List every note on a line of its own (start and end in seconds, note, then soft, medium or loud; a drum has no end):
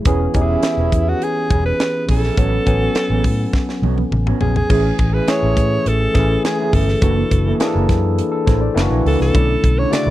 0.05 0.26 E1 medium
0.05 0.25 E3 medium
0.05 0.26 B3 medium
0.05 0.24 C#4 medium
0.05 0.26 C#4 medium
0.05 0.22 E4 medium
0.05 0.21 G#4 medium
0.05 0.26 G#4 medium
0.05 kick loud
0.05 closed hi-hat medium
0.22 muted clean electric guitar stroke soft
0.34 0.55 E1 medium
0.34 1.13 E3 medium
0.34 1.13 B3 medium
0.34 1.14 C#4 medium
0.34 1.10 E4 medium
0.34 0.41 G4 medium
0.34 muted clean electric guitar stroke soft
0.34 kick medium
0.34 closed hi-hat medium
0.41 1.17 G#4 medium
0.50 0.64 C#4 soft
0.50 0.64 E4 medium
0.50 0.64 G#4 medium
0.63 muted clean electric guitar stroke soft
0.63 snare loud
0.63 closed hi-hat medium
0.77 0.88 E1 medium
0.77 0.92 C#4 medium
0.77 0.93 E4 medium
0.77 0.93 B4 medium
0.92 1.13 E2 medium
0.92 muted clean electric guitar stroke soft
0.92 kick medium
0.92 closed hi-hat medium
1.07 1.26 F#4 medium
1.07 muted clean electric guitar stroke soft
1.22 1.65 G#4 loud
1.22 muted clean electric guitar stroke soft
1.22 closed hi-hat medium
1.37 muted clean electric guitar stroke soft
1.50 1.71 E1 medium
1.50 1.69 C#4 medium
1.50 1.65 E4 medium
1.50 1.64 G#4 medium
1.50 kick medium
1.50 closed hi-hat medium
1.65 2.06 B4 loud
1.65 muted clean electric guitar stroke soft
1.80 muted clean electric guitar stroke soft
1.80 snare loud
1.80 closed hi-hat medium
1.94 muted clean electric guitar stroke soft
2.08 2.29 A#1 medium
2.08 2.24 C#4 medium
2.08 2.23 E4 medium
2.08 2.23 G#4 medium
2.08 3.80 A4 loud
2.08 kick medium
2.08 open hi-hat medium
2.24 2.38 C#4 soft
2.24 2.38 E4 soft
2.24 2.38 G#4 medium
2.24 snare soft
2.37 2.58 A1 medium
2.37 2.57 F#3 medium
2.37 2.57 B3 medium
2.37 2.56 B3 medium
2.37 2.58 C#4 medium
2.37 2.53 C#4 medium
2.37 2.52 F#4 medium
2.37 2.58 A4 medium
2.37 kick loud
2.37 closed hi-hat medium
2.53 muted clean electric guitar stroke soft
2.66 2.87 A1 medium
2.66 3.45 F#3 medium
2.66 3.46 B3 medium
2.66 3.46 C#4 medium
2.66 3.46 G#5 medium
2.66 muted clean electric guitar stroke soft
2.66 kick medium
2.66 closed hi-hat medium
2.82 2.95 B3 soft
2.82 2.96 C#4 soft
2.82 2.96 F#4 medium
2.95 muted clean electric guitar stroke soft
2.95 snare loud
2.95 closed hi-hat medium
3.10 3.20 A1 medium
3.10 3.24 B3 medium
3.10 3.25 C#4 medium
3.10 3.26 G#4 medium
3.24 3.45 A2 medium
3.24 muted clean electric guitar stroke soft
3.24 kick medium
3.24 open hi-hat medium
3.40 muted clean electric guitar stroke soft
3.53 muted clean electric guitar stroke soft
3.53 kick medium
3.53 snare soft
3.69 muted clean electric guitar stroke soft
3.69 snare soft
3.82 4.03 B1 medium
3.82 4.01 B3 medium
3.82 3.97 C#4 medium
3.82 3.97 F#4 medium
3.82 high tom medium
3.98 muted clean electric guitar stroke soft
3.98 high tom medium
4.11 4.32 A1 medium
4.11 muted clean electric guitar stroke soft
4.11 mid tom medium
4.27 4.39 B3 medium
4.27 4.39 C#4 medium
4.27 4.40 F#4 medium
4.27 mid tom medium
4.40 4.61 A#1 medium
4.40 4.55 B3 medium
4.40 4.55 C#4 medium
4.40 4.54 F#4 medium
4.40 4.54 G#4 medium
4.40 floor tom medium
4.55 5.15 G#4 medium
4.55 muted clean electric guitar stroke soft
4.55 floor tom medium
4.69 4.90 A1 loud
4.69 5.09 E3 medium
4.69 5.09 A3 medium
4.69 4.88 C#4 medium
4.69 5.10 C#4 medium
4.69 4.84 E4 medium
4.69 5.10 G#4 medium
4.69 4.83 G#4 medium
4.69 kick loud
4.69 crash medium
4.84 muted clean electric guitar stroke soft
4.98 5.19 A1 medium
4.98 muted clean electric guitar stroke soft
4.98 kick medium
4.98 closed hi-hat medium
5.14 5.27 C#4 soft
5.14 5.27 E4 medium
5.14 5.28 G#4 medium
5.14 5.31 B4 medium
5.27 5.87 E3 medium
5.27 5.87 A3 medium
5.27 5.87 C#4 medium
5.27 5.87 G#4 medium
5.27 5.90 C#5 loud
5.27 snare loud
5.27 closed hi-hat medium
5.43 5.53 A1 medium
5.43 5.56 C#4 medium
5.43 5.56 E4 medium
5.43 5.57 A4 medium
5.56 5.77 A2 medium
5.56 muted clean electric guitar stroke soft
5.56 kick medium
5.56 closed hi-hat medium
5.73 muted clean electric guitar stroke soft
5.86 6.06 A1 medium
5.86 6.45 A4 medium
5.86 muted clean electric guitar stroke soft
5.86 closed hi-hat medium
6.01 muted clean electric guitar stroke soft
6.14 6.35 A1 medium
6.14 6.74 E3 medium
6.14 6.74 A3 medium
6.14 6.74 C#4 medium
6.14 6.34 C#4 medium
6.14 6.30 E4 medium
6.14 6.74 G#4 medium
6.14 6.29 G#4 medium
6.14 kick medium
6.14 snare soft
6.14 closed hi-hat medium
6.30 muted clean electric guitar stroke soft
6.44 6.76 G#4 medium
6.44 muted clean electric guitar stroke soft
6.44 snare loud
6.44 closed hi-hat medium
6.59 6.72 C#4 medium
6.59 6.73 E4 medium
6.59 6.73 G#4 medium
6.73 6.93 G1 medium
6.73 6.87 C#4 medium
6.73 6.88 E4 medium
6.73 6.87 G#4 medium
6.73 7.61 A4 medium
6.73 kick medium
6.73 open hi-hat medium
6.88 muted clean electric guitar stroke soft
6.88 snare soft
7.01 7.22 F#1 loud
7.01 7.41 E3 medium
7.01 7.41 A#3 medium
7.01 7.21 A#3 medium
7.01 7.42 D4 medium
7.01 7.17 E4 medium
7.01 7.42 F#4 medium
7.01 7.16 A4 medium
7.01 kick loud
7.01 closed hi-hat medium
7.17 muted clean electric guitar stroke soft
7.31 7.51 F#1 medium
7.31 muted clean electric guitar stroke soft
7.31 kick medium
7.31 closed hi-hat medium
7.45 7.60 A#3 soft
7.45 7.60 E4 soft
7.45 7.60 A4 medium
7.59 8.19 E3 medium
7.59 8.19 A#3 medium
7.59 8.20 D4 medium
7.59 7.67 G#4 medium
7.59 snare loud
7.59 closed hi-hat medium
7.67 8.22 A4 medium
7.74 7.85 F#1 medium
7.74 7.88 A#3 medium
7.74 7.89 E4 medium
7.74 7.90 A#4 medium
7.89 8.20 F#2 medium
7.89 muted clean electric guitar stroke soft
7.89 kick medium
7.89 snare soft
7.89 closed hi-hat medium
8.04 muted clean electric guitar stroke soft
8.18 muted clean electric guitar stroke soft
8.18 closed hi-hat medium
8.32 8.46 A4 medium
8.32 muted clean electric guitar stroke soft
8.46 8.68 A1 medium
8.46 8.65 A#3 medium
8.46 8.60 E4 medium
8.46 8.60 A4 medium
8.46 8.61 C5 medium
8.46 kick medium
8.46 snare soft
8.46 closed hi-hat medium
8.61 8.89 D5 medium
8.61 muted clean electric guitar stroke soft
8.74 8.86 F#1 loud
8.74 9.22 E3 medium
8.74 9.22 A#3 medium
8.74 9.22 D4 medium
8.74 8.82 E4 medium
8.74 muted clean electric guitar stroke soft
8.74 snare loud
8.74 closed hi-hat medium
8.82 9.25 F#4 medium
8.90 9.01 A#1 medium
8.90 9.04 A#3 medium
8.90 9.05 E4 medium
8.90 9.05 A4 medium
9.05 9.15 C#2 medium
9.05 9.19 A#3 medium
9.05 9.19 E4 medium
9.05 9.18 A4 medium
9.05 9.20 A4 medium
9.05 open hi-hat medium
9.19 9.30 C2 medium
9.19 9.80 A4 medium
9.19 muted clean electric guitar stroke soft
9.19 snare soft
9.33 9.55 B1 loud
9.33 9.73 D3 medium
9.33 9.73 A3 medium
9.33 9.74 C#4 medium
9.33 9.52 D4 medium
9.33 9.48 E4 medium
9.33 9.74 E4 medium
9.33 9.47 A4 medium
9.33 kick loud
9.33 closed hi-hat medium
9.48 muted clean electric guitar stroke soft
9.62 9.84 B1 medium
9.62 muted clean electric guitar stroke soft
9.62 kick medium
9.62 closed hi-hat medium
9.78 9.91 D4 medium
9.78 9.91 E4 medium
9.78 9.92 A4 medium
9.78 9.94 C#5 medium
9.90 10.10 C#3 medium
9.90 10.10 D3 medium
9.90 10.10 A3 medium
9.90 10.10 F#4 medium
9.90 10.10 D5 loud
9.90 muted clean electric guitar stroke soft
9.90 snare loud
9.90 closed hi-hat medium
10.06 10.10 B1 loud
10.06 10.10 E4 medium
10.06 10.10 B4 medium